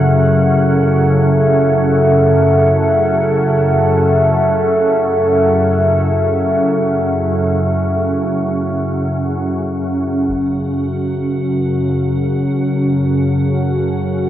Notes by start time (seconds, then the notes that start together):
Already playing: F#2 C#3 A4 E5 F#5
10.29 F#2 C#3 F#4 F#5, taiko
11.68 C#5
11.79 A5
12.41 F#5